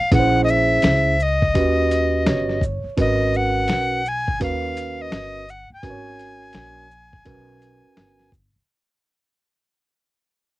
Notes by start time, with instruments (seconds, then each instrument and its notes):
Already playing: recorder F5
0.11 upright bass A#1, tine electric piano C#4 E4 G#4 B4, recorder F#5, kick, closed hi-hat
0.19 tine electric piano C5
0.44 recorder D#5
0.48 recorder E5, shaker
0.82 upright bass C#2, snare, closed hi-hat
1.20 recorder D#5, shaker
1.42 kick
1.55 upright bass D#2, tine electric piano C#4 F#4 G4 B4, kick, closed hi-hat
1.91 closed hi-hat, shaker
2.26 upright bass G1, tine electric piano C#5, snare, closed hi-hat
2.49 snare
2.61 kick, shaker
2.84 muted upright bass stroke
2.97 upright bass G#1, tine electric piano C#4 F#4 A#4 B4, recorder D#5, kick, closed hi-hat
3.34 recorder F#5, shaker
3.68 upright bass B1, snare, closed hi-hat
4.06 recorder G#5, shaker
4.28 kick
4.40 upright bass D#2, tine electric piano C#4 F#4 A#4 B4, recorder F5, kick, closed hi-hat
4.77 closed hi-hat, shaker
5.01 recorder D#5
5.11 upright bass G1, snare, closed hi-hat
5.49 recorder F#5, shaker
5.70 recorder G#5, muted upright bass stroke
5.83 upright bass G#1, tine electric piano C#4 F#4 A#4 B4, kick, closed hi-hat
5.90 tine electric piano C#5
6.19 closed hi-hat, shaker
6.53 upright bass A#1, snare, closed hi-hat
6.91 shaker
7.13 kick
7.25 upright bass B1, tine electric piano C#4 F#4 A#4 B4, kick, closed hi-hat
7.62 closed hi-hat, shaker
7.84 muted upright bass stroke
7.97 upright bass G1, snare, closed hi-hat
8.20 snare
8.32 kick, shaker
8.56 muted upright bass stroke